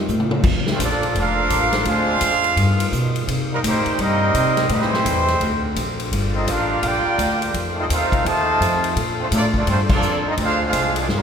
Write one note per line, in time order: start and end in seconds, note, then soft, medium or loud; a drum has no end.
0.00 0.43 D#3 medium
0.00 0.42 A3 medium
0.00 0.42 C4 medium
0.00 0.42 F4 medium
0.08 0.43 A2 medium
0.08 hi-hat pedal medium
0.20 mid tom medium
0.31 mid tom loud
0.42 0.78 F2 medium
0.42 2.54 D3 medium
0.42 1.84 F3 medium
0.42 1.84 A#3 medium
0.42 2.55 F4 medium
0.42 kick medium
0.42 crash loud
0.66 snare medium
0.71 0.82 A3 medium
0.71 0.81 C4 medium
0.71 0.82 D4 medium
0.71 0.82 F4 medium
0.71 0.82 C5 medium
0.79 1.14 A#1 loud
0.79 1.13 F3 medium
0.79 1.13 D4 medium
0.79 1.14 A4 medium
0.79 1.14 A4 loud
0.79 1.14 D5 loud
0.79 kick soft
0.79 hi-hat pedal medium
0.79 ride medium
0.84 1.15 A#3 medium
0.84 1.15 F4 medium
1.03 ride soft
1.15 1.49 F1 medium
1.15 1.87 A#3 loud
1.15 1.87 D4 loud
1.15 1.86 F4 loud
1.15 1.87 A4 loud
1.15 1.87 A#4 loud
1.15 1.87 F5 loud
1.15 kick soft
1.15 ride medium
1.19 1.87 D4 loud
1.50 1.85 A1 loud
1.50 kick soft
1.50 hi-hat pedal medium
1.50 ride medium
1.72 snare medium
1.72 ride medium
1.85 2.20 D2 loud
1.85 2.56 G#3 medium
1.85 2.54 G#3 medium
1.85 2.56 C4 medium
1.85 2.54 C4 medium
1.85 2.54 D4 loud
1.85 3.12 F4 loud
1.85 2.54 G#4 loud
1.85 2.54 C5 loud
1.85 3.12 F5 loud
1.85 kick soft
1.85 ride medium
2.21 2.56 F2 medium
2.21 kick soft
2.21 hi-hat pedal medium
2.21 ride medium
2.44 ride medium
2.56 2.91 G2 medium
2.56 3.27 D#3 medium
2.56 4.68 G3 medium
2.56 3.27 B3 medium
2.56 3.27 F4 medium
2.56 kick soft
2.56 ride medium
2.80 ride medium
2.92 3.27 B2 loud
2.92 kick soft
2.92 hi-hat pedal medium
3.16 ride medium
3.26 5.38 C3 medium
3.26 3.62 C3 loud
3.26 4.67 A#3 medium
3.26 4.67 D#4 medium
3.26 kick soft
3.26 ride medium
3.53 3.58 D#3 medium
3.53 3.58 G3 medium
3.53 3.58 A#3 medium
3.53 3.58 C4 medium
3.53 3.58 D#4 medium
3.53 3.58 A#4 loud
3.63 3.84 A2 loud
3.63 3.97 D#3 loud
3.63 3.97 G3 medium
3.63 3.98 A#3 loud
3.63 3.98 C4 loud
3.63 3.98 D#4 medium
3.63 3.98 G4 medium
3.63 3.98 C5 loud
3.63 kick soft
3.63 hi-hat pedal medium
3.63 ride loud
3.86 muted upright bass stroke soft
3.86 ride medium
3.98 4.33 G2 loud
3.98 4.69 G3 loud
3.98 4.70 A#3 loud
3.98 4.71 C4 loud
3.98 4.71 D#4 loud
3.98 4.71 G4 loud
3.98 4.71 A#4 loud
3.98 4.71 D#5 loud
3.98 kick soft
3.98 ride medium
4.34 4.69 C3 loud
4.34 kick soft
4.34 hi-hat pedal medium
4.34 ride medium
4.57 snare soft
4.57 ride medium
4.69 5.04 A2 loud
4.69 5.37 E3 medium
4.69 5.37 G3 medium
4.69 5.38 G3 loud
4.69 5.40 A3 medium
4.69 5.39 C4 medium
4.69 5.96 C4 medium
4.69 5.38 E4 medium
4.69 5.40 G4 medium
4.69 5.38 B4 medium
4.69 5.96 C5 loud
4.69 kick soft
4.69 ride medium
4.82 snare soft
4.93 snare medium
5.05 5.40 E2 medium
5.05 kick soft
5.05 hi-hat pedal medium
5.05 ride medium
5.28 snare soft
5.28 ride soft
5.40 5.75 D2 medium
5.40 7.52 D3 medium
5.40 7.52 A#3 medium
5.40 5.95 C4 medium
5.40 5.95 F#4 medium
5.40 kick soft
5.40 ride medium
5.76 6.11 A#1 loud
5.76 kick soft
5.76 hi-hat pedal medium
5.76 ride medium
6.00 ride medium
6.12 6.46 G1 medium
6.12 7.52 G3 medium
6.12 7.52 F4 medium
6.12 kick soft
6.12 ride medium
6.33 6.47 C4 medium
6.33 6.46 D#4 medium
6.33 6.47 F4 medium
6.33 6.47 A4 medium
6.33 6.47 D#5 medium
6.47 6.82 A1 medium
6.47 6.83 A#3 medium
6.47 6.83 D4 medium
6.47 6.84 D4 medium
6.47 6.83 F4 loud
6.47 6.84 G4 medium
6.47 6.84 A#4 medium
6.47 6.84 F5 loud
6.47 kick soft
6.47 hi-hat pedal medium
6.47 ride medium
6.83 7.04 A#1 medium
6.83 7.55 A#3 loud
6.83 7.55 D4 loud
6.83 7.56 F4 medium
6.83 7.54 G4 loud
6.83 7.55 A#4 medium
6.83 7.55 D5 loud
6.83 7.56 G5 loud
6.83 kick soft
6.83 ride medium
7.05 muted upright bass stroke soft
7.18 7.53 D2 loud
7.18 kick soft
7.18 hi-hat pedal medium
7.18 ride medium
7.42 ride medium
7.54 7.89 F2 medium
7.54 8.95 D#3 medium
7.54 8.95 C4 medium
7.54 10.36 F4 medium
7.54 10.36 A4 medium
7.54 kick soft
7.54 ride medium
7.76 7.82 A3 medium
7.76 7.83 C4 medium
7.76 7.85 C4 medium
7.76 7.82 D#4 medium
7.76 7.84 F4 medium
7.76 7.84 A4 medium
7.76 7.84 D#5 loud
7.89 8.11 D#2 medium
7.89 8.23 A3 medium
7.89 8.23 C4 loud
7.89 8.24 D#4 loud
7.89 8.23 F4 loud
7.89 8.24 A4 loud
7.89 8.24 C5 loud
7.89 8.24 F5 loud
7.89 kick soft
7.89 hi-hat pedal medium
7.89 ride medium
8.12 muted upright bass stroke soft
8.12 kick medium
8.12 ride soft
8.25 8.59 D#2 medium
8.25 8.96 C3 loud
8.25 8.96 D#3 loud
8.25 8.96 A3 loud
8.25 8.97 F4 loud
8.25 8.97 C5 loud
8.25 8.97 D#5 loud
8.25 8.97 A5 loud
8.25 kick soft
8.25 ride medium
8.60 8.95 F2 loud
8.60 kick soft
8.60 hi-hat pedal medium
8.60 ride medium
8.84 ride medium
8.96 9.31 A#2 loud
8.96 11.22 D3 medium
8.96 10.37 D4 medium
8.96 kick soft
8.96 ride medium
9.20 9.26 A3 medium
9.20 9.26 C4 medium
9.20 9.26 D4 medium
9.20 9.26 F4 medium
9.20 9.26 C5 loud
9.31 9.66 A2 loud
9.31 9.43 F3 medium
9.31 9.43 A3 medium
9.31 9.44 A#3 medium
9.31 9.43 D4 medium
9.31 9.44 F4 medium
9.31 9.44 A4 medium
9.31 9.44 D5 loud
9.31 kick soft
9.31 hi-hat pedal medium
9.31 ride medium
9.54 9.67 F3 medium
9.54 9.67 A3 medium
9.54 9.67 A#3 medium
9.54 9.67 D4 medium
9.54 9.68 F4 medium
9.54 9.68 A4 medium
9.54 9.67 D5 medium
9.54 kick medium
9.67 10.01 G2 medium
9.67 9.79 A3 medium
9.67 9.79 C4 medium
9.67 9.79 D4 medium
9.67 9.79 F4 medium
9.67 9.79 C5 loud
9.67 kick soft
9.67 ride medium
9.89 10.24 F3 medium
9.89 10.24 A#3 medium
9.89 10.24 D4 medium
9.89 10.24 F4 medium
9.89 10.24 A4 medium
9.89 10.24 D5 medium
9.89 kick medium
9.89 crash medium
10.02 10.37 F2 loud
10.02 hi-hat pedal medium
10.27 10.34 C4 medium
10.27 10.32 D#4 medium
10.27 10.34 F4 medium
10.27 10.34 A4 medium
10.27 10.34 D#5 medium
10.37 10.72 D2 loud
10.37 11.08 G#3 medium
10.37 10.60 G#3 medium
10.37 11.08 C4 medium
10.37 10.60 C4 medium
10.37 11.22 F4 medium
10.37 10.60 F4 medium
10.37 kick soft
10.37 ride medium
10.43 10.62 D4 medium
10.43 10.62 G#4 loud
10.43 10.62 C5 loud
10.43 10.62 F5 loud
10.62 10.94 G#3 medium
10.62 10.95 C4 medium
10.62 10.95 F4 medium
10.62 10.96 G#4 medium
10.62 10.96 F5 loud
10.66 10.97 D4 medium
10.66 10.97 C5 loud
10.73 11.08 C2 medium
10.73 kick soft
10.73 hi-hat pedal medium
10.73 ride medium
10.96 11.05 F3 medium
10.96 11.05 G#3 medium
10.96 ride medium
11.00 11.06 C4 medium
11.00 11.05 D4 medium
11.00 11.06 F4 medium
11.00 11.06 G#4 medium
11.00 11.06 D5 medium
11.08 11.22 G1 medium
11.08 11.22 G3 medium
11.08 11.22 B3 medium
11.08 snare medium
11.12 11.22 D3 medium
11.12 11.22 F3 medium
11.12 11.22 G3 medium
11.12 11.22 B3 medium
11.12 11.22 D4 medium
11.12 11.22 F4 medium
11.12 11.22 B4 medium